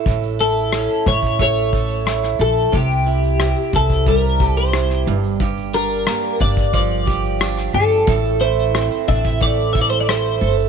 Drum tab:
SH |xx-xxxxxxxxxxx-x|xxxxxxxxxx-xxx-x|xx-xxxxxxx-xxx-x|xx-xxxxxxx-xxx-x|
SD |----r-------rr--|----r-------rr--|----r-------rr--|----r-------r---|
BD |o-----ooo-o-----|o-----ooo-o-----|o-----ooo-o-----|o-----ooo-o-----|